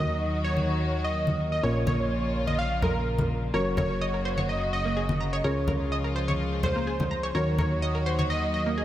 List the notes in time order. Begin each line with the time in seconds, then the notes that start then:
Already playing: D#2 D#3 F#3 A#3 D#4 F#4 A#4 D#5
0.44 C#5
0.57 high conga
1.04 D#5
1.27 high conga
1.52 D#5
1.63 A#1 A#2 C#3 F3 C#4 F4 A#4 C#5
1.87 C#5, high conga, low conga
2.47 D#5, high conga
2.59 F5
2.82 A#4, low conga
3.18 high conga, low conga
3.54 F#1 F#3 C#4 F#4 A#4 C#5
3.77 A#4 C#5, high conga, low conga
4.01 D#5
4.14 A#4
4.25 C5
4.38 C#5, high conga
4.49 D#5
4.73 D#5
4.85 A#3
4.97 G#4
5.09 high conga
5.21 A#5
5.33 C#5
5.44 C#2 C#3 F3 G#3 C#4 F4 G#4 A#4 C#5
5.68 A#4, high conga, low conga
5.92 D#5
6.04 A#4
6.16 C5
6.28 C#5, high conga
6.63 C5, low conga
6.76 A#3
6.87 G#4
7.00 high conga, low conga
7.11 A#5
7.23 C#5
7.35 D#2 D#3 F#3 A#3 D#4 F#4 A#4 C#5
7.59 A#4 C#5, high conga, low conga
7.82 D#5
7.95 A#4
8.06 C5
8.19 C#5, high conga
8.30 D#5
8.54 D#5
8.66 A#3
8.78 G#4